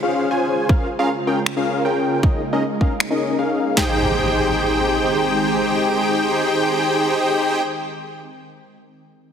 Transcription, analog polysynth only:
0.03 C#4 F4 G#4 C5 F5
0.31 C#4 F4 G#4 C5 G#5
0.69 C#4 F4 G#4 A#4 F5
0.99 C#4 F4 G#4 A#4 F5
1.27 C#4 F4 G#4 A#4 G5
1.57 C#4 F4 G#4 A#4 F5
1.85 C#4 F4 G#4 A#4 G5
2.23 C#4 D#4 G#4 A#4 D#5
2.53 C#4 D#4 G#4 A#4 D#5
2.81 C#4 D#4 G#4 A#4 F5
3.11 C#4 D#4 G#4 A#4 D#5
3.39 C#4 D#4 G#4 A#4 F5
3.77 D#4 G4 G#4 C5 G5

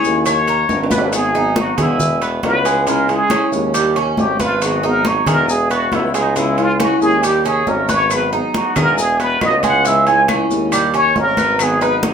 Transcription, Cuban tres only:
Already playing: G#4
0.26 C#5
0.48 A#4
0.91 B3
1.35 D#4
1.78 G#4
2.22 B3
2.65 G#3
2.87 G#3
3.31 C#4
3.74 G3
3.96 C#4
4.39 B4
4.83 D#4
5.27 G#4
5.71 B3
6.14 G#3
6.36 G#3
6.80 C#4
7.24 G3
7.46 C#4
7.89 B4
8.33 D#4
8.77 G#4
9.20 B3
9.64 G#3
9.85 G#3
10.29 C#4
10.72 G3
10.94 C#4
11.38 B4
11.81 D#4

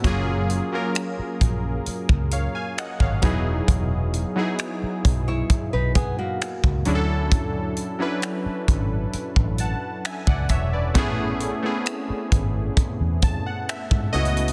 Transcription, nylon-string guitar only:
5.28 E4 C#5
5.73 D#4 B4
5.95 B3 G#4
6.18 A#3 F#4

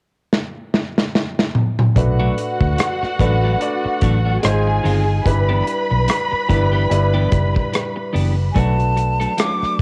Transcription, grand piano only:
1.95 A3 D4 F#4 B4
3.19 A3 D4 F#4 B4
3.60 A3 D4 F#4 D5
4.43 G#3 D#4 F4 C5
5.25 G3 D4 E4 B4
6.48 G3 D4 E4 B4
6.89 G3 D4 E4 B4
8.55 A3 D4 F#4 B4

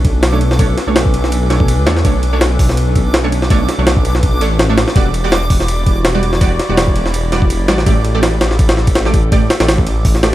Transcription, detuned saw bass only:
Already playing: B1
0.87 B1
1.14 B1
1.78 C#2
1.86 E2
2.05 B1
2.59 B1
3.78 B1
4.05 B1
4.41 A1
4.96 E1
5.50 E1
6.69 E1
6.96 E1
7.60 F#1
7.68 A1
7.86 A1
8.41 A1
9.60 A1
9.86 A1

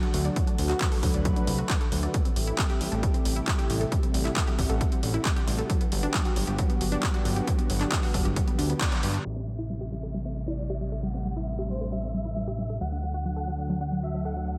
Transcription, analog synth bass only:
0.14 D2
0.59 D2
1.03 D2
1.14 D2
1.47 C2
1.92 D2
2.36 A1
2.81 A1
2.92 A1
3.25 A1
3.70 A1
4.14 A1
4.59 A1
4.70 A1
5.03 A1
5.48 A1
5.92 G1
6.36 G1
6.47 G1
6.81 G1
7.25 G1
7.70 G1
8.14 G1
8.25 G1
8.59 D2
9.03 G2
9.25 A1
12.81 D2

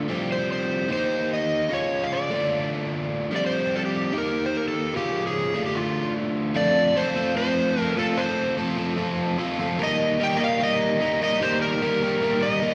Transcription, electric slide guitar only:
0.32 C5
0.52 C5
0.93 C5
1.33 D#5
1.74 C#5
2.04 F5
2.13 D5
3.36 D5
3.46 C5
3.76 A4
3.85 G4
4.18 A#4
4.46 C5
4.57 A#4
4.68 A4
4.97 G4
5.27 G#4
5.66 G4
5.75 F4
6.56 D5
6.97 C5
7.37 C5
7.80 A#4
7.99 A4
8.17 C5
9.83 D#5
10.23 G5
10.37 D#5
10.44 F5
10.63 D#5
11.24 D#5
11.43 C5
11.62 A#4
12.43 D#5

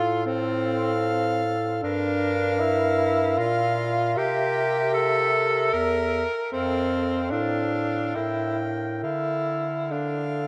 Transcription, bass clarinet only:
Already playing: A2
1.84 G2
3.39 A#2
4.17 C3
5.73 E2
6.52 F2
7.31 A2
8.16 A2
9.04 D3

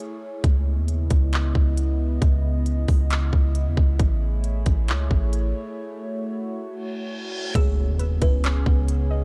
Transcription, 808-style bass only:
0.44 C#2
0.77 D#2
1.11 C#2
1.55 C#2
2.22 C#2
2.88 C#2
3.33 C#2
3.66 E2
3.77 C#2
4.00 A1
4.66 A1
4.88 C#2
5.11 A1
7.55 C#2
7.88 D#2
8.22 C#2
8.66 C#2

